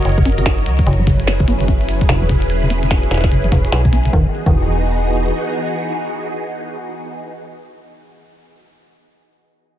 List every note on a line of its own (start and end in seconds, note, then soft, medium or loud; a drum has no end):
0.00 4.09 F#3 medium
0.00 0.83 F#4 medium
0.00 0.83 A#4 medium
0.00 0.83 C#5 medium
0.00 0.83 D#5 medium
0.00 closed hi-hat soft
0.05 0.68 F#1 medium
0.05 0.10 D#3 medium
0.05 closed hi-hat soft
0.12 closed hi-hat soft
0.18 0.22 C#3 loud
0.18 kick loud
0.18 closed hi-hat soft
0.23 0.30 C#4 loud
0.23 closed hi-hat soft
0.25 closed hi-hat medium
0.32 closed hi-hat soft
0.38 0.41 C#3 medium
0.38 closed hi-hat soft
0.46 0.68 D#4 medium
0.46 kick loud
0.46 snare loud
0.46 closed hi-hat soft
0.58 closed hi-hat soft
0.66 0.82 C#2 loud
0.66 0.80 C#3 medium
0.66 closed hi-hat medium
0.79 0.86 F#3 medium
0.79 kick loud
0.79 closed hi-hat soft
0.87 2.05 F#1 loud
0.87 0.98 C#3 medium
0.87 4.10 C#4 medium
0.87 4.10 E4 medium
0.87 4.10 G#4 medium
0.87 4.10 B4 medium
0.87 closed hi-hat soft
0.93 closed hi-hat soft
0.99 1.02 F#3 medium
1.07 1.29 C#3 medium
1.07 kick medium
1.07 closed hi-hat medium
1.20 closed hi-hat soft
1.27 1.32 E3 medium
1.27 snare loud
1.27 closed hi-hat soft
1.40 1.45 C#3 loud
1.40 kick loud
1.40 closed hi-hat soft
1.48 1.52 B3 loud
1.48 closed hi-hat medium
1.61 1.63 C#3 medium
1.61 closed hi-hat soft
1.68 1.90 C#4 medium
1.68 kick medium
1.68 closed hi-hat soft
1.81 closed hi-hat soft
1.89 2.03 C#3 medium
1.89 closed hi-hat medium
2.01 2.08 F#3 medium
2.01 kick loud
2.01 closed hi-hat soft
2.09 3.07 E1 medium
2.09 2.21 C#3 medium
2.09 snare loud
2.09 closed hi-hat soft
2.22 2.25 F#3 medium
2.29 2.51 C#3 medium
2.29 kick medium
2.29 closed hi-hat medium
2.42 closed hi-hat soft
2.50 2.54 E3 medium
2.50 closed hi-hat soft
2.62 2.67 C#3 loud
2.70 2.75 B3 loud
2.70 closed hi-hat medium
2.83 2.86 C#3 medium
2.83 closed hi-hat soft
2.91 3.13 C#4 medium
2.91 kick medium
2.91 snare loud
2.91 closed hi-hat soft
3.03 closed hi-hat soft
3.11 3.33 E1 medium
3.11 3.25 C#3 medium
3.11 snare medium
3.11 closed hi-hat medium
3.14 snare soft
3.17 snare soft
3.21 3.31 F#3 medium
3.21 snare soft
3.24 kick loud
3.24 snare medium
3.31 3.51 F#1 medium
3.31 3.43 C#3 medium
3.31 closed hi-hat soft
3.44 3.47 F#3 medium
3.44 closed hi-hat soft
3.52 3.67 E1 medium
3.52 3.74 C#3 medium
3.52 kick medium
3.52 closed hi-hat medium
3.65 closed hi-hat medium
3.72 4.09 B1 medium
3.72 3.77 E3 medium
3.72 snare loud
3.72 closed hi-hat medium
3.85 3.90 C#3 loud
3.85 kick loud
3.85 closed hi-hat soft
3.93 3.97 B3 loud
3.93 closed hi-hat medium
4.05 4.08 C#3 medium
4.05 closed hi-hat soft
4.13 4.26 E1 medium
4.13 4.26 D#3 medium
4.13 7.32 E3 medium
4.13 7.32 B3 medium
4.13 7.32 D#4 medium
4.13 7.32 F#4 medium
4.13 7.32 G#4 medium
4.13 kick loud
4.46 5.32 E1 medium
4.46 4.56 D#3 medium
4.46 kick loud